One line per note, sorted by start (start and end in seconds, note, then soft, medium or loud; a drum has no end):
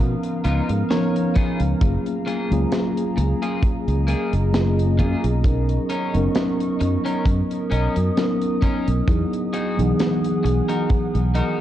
0.00 0.14 B2 medium
0.00 0.89 F3 medium
0.00 0.90 B3 medium
0.00 1.77 B3 medium
0.00 0.90 C#4 medium
0.00 0.91 D#4 medium
0.00 0.91 A#4 loud
0.00 3.59 F5 medium
0.00 5.41 A#5 medium
0.00 1.79 F6 medium
0.23 closed hi-hat soft
0.44 0.60 C#2 medium
0.44 0.69 B3 medium
0.44 0.69 D#4 medium
0.44 0.69 F4 medium
0.44 0.70 A#4 medium
0.44 closed hi-hat medium
0.69 0.82 G#2 medium
0.69 closed hi-hat medium
0.89 1.76 F3 medium
0.89 1.76 B3 medium
0.89 1.76 C#4 medium
0.89 1.76 D#4 medium
0.89 1.77 A#4 medium
0.89 1.77 C#5 medium
0.89 snare loud
0.89 closed hi-hat medium
1.16 closed hi-hat medium
1.35 1.60 B3 medium
1.35 1.60 D#4 medium
1.35 1.60 F4 medium
1.35 1.60 G#4 medium
1.35 kick loud
1.35 closed hi-hat medium
1.60 1.73 C#2 medium
1.60 closed hi-hat medium
1.80 1.96 F#1 medium
1.80 2.45 F#3 medium
1.80 2.45 A#3 medium
1.80 2.45 C#4 medium
1.80 2.46 F4 medium
1.80 5.41 G#4 medium
1.80 2.46 G#4 medium
1.80 kick loud
1.80 closed hi-hat medium
2.06 closed hi-hat soft
2.26 2.51 A#3 medium
2.26 2.51 F4 medium
2.26 2.51 G#4 medium
2.26 closed hi-hat medium
2.50 2.64 C#2 medium
2.50 4.48 F#3 medium
2.50 4.49 A#3 medium
2.50 4.49 C#4 medium
2.50 4.49 F4 medium
2.50 4.50 G#4 loud
2.50 closed hi-hat medium
2.72 snare loud
2.72 closed hi-hat medium
2.97 closed hi-hat medium
3.17 3.32 C#2 medium
3.17 muted clean electric guitar stroke medium
3.17 closed hi-hat medium
3.42 3.63 A#3 medium
3.42 3.63 F4 medium
3.42 3.63 G#4 medium
3.42 closed hi-hat medium
3.62 9.04 D#5 medium
3.62 muted fingered electric bass stroke soft
3.62 kick loud
3.62 closed hi-hat medium
3.88 4.13 C#2 medium
3.88 closed hi-hat soft
4.08 4.33 A#3 medium
4.08 4.33 F4 medium
4.08 4.33 G#4 medium
4.08 closed hi-hat medium
4.33 5.00 F#1 medium
4.33 closed hi-hat medium
4.53 5.39 F#3 medium
4.53 5.39 A#3 medium
4.53 5.40 C#4 medium
4.53 5.40 F4 medium
4.53 5.40 G#4 medium
4.53 snare loud
4.53 closed hi-hat medium
4.79 closed hi-hat soft
4.99 5.14 F#2 medium
4.99 5.24 A#3 medium
4.99 5.24 F4 medium
4.99 5.24 G#4 medium
4.99 kick medium
4.99 closed hi-hat medium
5.24 5.77 B1 medium
5.24 closed hi-hat medium
5.44 6.08 F#3 medium
5.44 6.09 B3 medium
5.44 6.09 C#4 medium
5.44 6.09 D#4 medium
5.44 9.05 A#4 medium
5.44 6.09 A#4 medium
5.44 7.25 C#6 medium
5.44 kick loud
5.44 closed hi-hat medium
5.69 closed hi-hat soft
5.90 6.15 C#4 medium
5.90 6.15 D#4 medium
5.90 6.15 A#4 medium
5.90 closed hi-hat medium
6.13 6.27 F#1 medium
6.13 8.12 F#3 medium
6.13 8.12 B3 medium
6.13 8.12 C#4 medium
6.13 8.13 D#4 medium
6.13 8.13 A#4 loud
6.13 closed hi-hat medium
6.35 snare loud
6.35 closed hi-hat medium
6.60 closed hi-hat medium
6.80 6.96 F#2 medium
6.80 muted clean electric guitar stroke medium
6.80 closed hi-hat medium
7.05 7.26 C#4 medium
7.05 7.26 D#4 medium
7.05 7.26 A#4 medium
7.05 closed hi-hat medium
7.25 7.41 F#2 medium
7.25 9.06 D#6 medium
7.25 kick medium
7.25 closed hi-hat medium
7.51 closed hi-hat soft
7.71 7.87 B1 medium
7.71 7.96 C#4 medium
7.71 7.96 D#4 medium
7.71 7.97 A#4 medium
7.71 closed hi-hat medium
7.96 8.09 F#2 medium
7.96 closed hi-hat medium
8.17 9.03 F#3 medium
8.17 9.03 B3 medium
8.17 9.03 C#4 medium
8.17 9.04 D#4 medium
8.17 9.04 A#4 medium
8.17 snare loud
8.17 closed hi-hat medium
8.41 closed hi-hat soft
8.62 8.87 C#4 medium
8.62 8.87 D#4 medium
8.62 8.88 A#4 medium
8.62 kick medium
8.62 closed hi-hat medium
8.88 9.00 B1 medium
8.88 closed hi-hat medium
9.08 9.23 E2 medium
9.08 9.72 F#3 medium
9.08 9.72 B3 medium
9.08 9.73 D#4 medium
9.08 9.73 E4 medium
9.08 11.61 G#4 medium
9.08 9.73 G#4 medium
9.08 11.61 F#5 medium
9.08 11.61 D#6 medium
9.08 kick loud
9.08 closed hi-hat medium
9.33 closed hi-hat soft
9.53 9.78 D#4 medium
9.53 9.78 F#4 medium
9.53 9.78 G#4 loud
9.53 closed hi-hat medium
9.77 9.91 B1 medium
9.77 11.61 E3 medium
9.77 11.61 F#3 medium
9.77 11.61 B3 medium
9.77 11.61 D#4 medium
9.77 11.61 G#4 loud
9.77 closed hi-hat medium
9.99 snare loud
9.99 closed hi-hat medium
10.24 closed hi-hat medium
10.44 10.60 B1 medium
10.44 muted clean electric guitar stroke medium
10.44 closed hi-hat medium
10.69 10.90 D#4 medium
10.69 10.90 F#4 medium
10.69 10.90 A#4 medium
10.69 closed hi-hat medium
10.90 muted fingered electric bass stroke soft
10.90 kick loud
10.90 closed hi-hat medium
11.15 11.41 B1 medium
11.15 closed hi-hat soft
11.35 11.60 D#4 medium
11.35 11.60 F#4 medium
11.35 11.60 A#4 medium
11.35 closed hi-hat medium